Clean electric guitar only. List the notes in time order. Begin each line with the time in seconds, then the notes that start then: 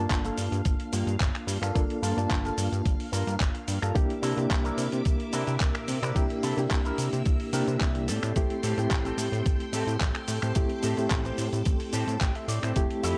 0.11 muted clean electric guitar stroke
0.25 A#3 F4 A4
0.65 muted clean electric guitar stroke
0.92 A#3 F4 G4
1.35 muted clean electric guitar stroke
1.62 A#3 F4 A4
2.02 A#3 F4 A4
2.44 A#3 F4 A4
2.85 muted clean electric guitar stroke
3.12 A#3 F4 A#4
3.54 muted clean electric guitar stroke
3.82 A#3 F4 A4
4.22 D4 E4 A#4
4.49 muted clean electric guitar stroke
4.64 D4 E4 A#4
5.05 muted clean electric guitar stroke
5.32 D4 E4 A#4
5.75 muted clean electric guitar stroke
6.02 D4 E4 A#4
6.43 D4 E4 A4
6.85 D4 E4 A#4
7.25 muted clean electric guitar stroke
7.53 D4 E4 A#4 G5
7.80 E5
7.95 muted clean electric guitar stroke
8.08 C4 G4 A4 D5
8.63 C4 G4 A4
9.05 C4 G4 A4
9.45 muted clean electric guitar stroke
9.73 C4 G4 A4
10.15 muted clean electric guitar stroke
10.42 C4 G4 C5
10.83 C4 G4 A4
11.25 C4 G4 C5
11.66 muted clean electric guitar stroke
11.93 C4 G4 C5 A5
12.21 G5
12.35 E5, muted clean electric guitar stroke
12.49 D5
12.62 C4 G4 C5
13.03 E4 G4 A4